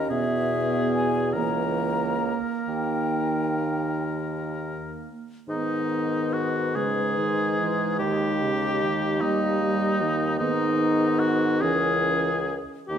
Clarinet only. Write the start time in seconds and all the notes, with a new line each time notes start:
Already playing: C#4
0.11 B3
1.36 A#3
5.49 B3
6.76 G#3
9.21 A#3
10.41 B3
11.62 C#4
12.90 A#3